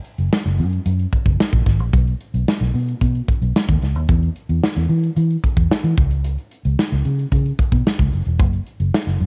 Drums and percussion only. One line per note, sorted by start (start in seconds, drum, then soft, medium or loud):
0.05 closed hi-hat medium
0.18 closed hi-hat medium
0.33 snare loud
0.45 snare soft
0.45 closed hi-hat soft
0.59 open hi-hat medium
0.73 closed hi-hat soft
0.86 closed hi-hat medium
0.99 closed hi-hat soft
1.13 kick medium
1.13 closed hi-hat medium
1.26 kick medium
1.26 closed hi-hat soft
1.40 snare loud
1.53 kick medium
1.53 closed hi-hat soft
1.66 kick medium
1.66 snare soft
1.66 closed hi-hat medium
1.80 closed hi-hat medium
1.93 kick loud
1.93 closed hi-hat medium
2.07 closed hi-hat soft
2.21 closed hi-hat medium
2.34 closed hi-hat soft
2.48 snare loud
2.61 snare soft
2.61 closed hi-hat soft
2.74 open hi-hat medium
2.88 closed hi-hat soft
3.01 kick medium
3.01 closed hi-hat medium
3.15 closed hi-hat soft
3.28 kick medium
3.28 closed hi-hat medium
3.42 closed hi-hat soft
3.56 snare loud
3.69 kick medium
3.69 closed hi-hat soft
3.82 snare soft
3.82 closed hi-hat medium
3.95 closed hi-hat medium
4.09 kick loud
4.09 closed hi-hat medium
4.23 closed hi-hat soft
4.36 closed hi-hat medium
4.49 closed hi-hat soft
4.64 snare loud
4.76 snare soft
4.76 closed hi-hat soft
4.90 open hi-hat medium
5.04 closed hi-hat soft
5.17 closed hi-hat medium
5.31 closed hi-hat soft
5.44 kick medium
5.44 closed hi-hat medium
5.57 kick medium
5.57 closed hi-hat medium
5.72 snare loud
5.84 closed hi-hat soft
5.98 kick loud
5.98 closed hi-hat medium
6.11 closed hi-hat medium
6.25 closed hi-hat medium
6.38 closed hi-hat soft
6.51 closed hi-hat medium
6.65 closed hi-hat medium
6.79 snare loud
6.92 snare soft
6.92 closed hi-hat soft
7.05 closed hi-hat medium
7.19 closed hi-hat soft
7.32 kick medium
7.32 closed hi-hat medium
7.46 closed hi-hat soft
7.59 kick medium
7.59 closed hi-hat medium
7.72 kick medium
7.72 closed hi-hat soft
7.87 snare loud
7.99 kick medium
7.99 closed hi-hat soft
8.13 open hi-hat medium
8.26 closed hi-hat soft
8.39 kick loud
8.39 closed hi-hat medium
8.53 closed hi-hat soft
8.67 closed hi-hat medium
8.80 closed hi-hat soft
8.94 snare loud
9.07 snare soft
9.07 closed hi-hat soft
9.20 open hi-hat medium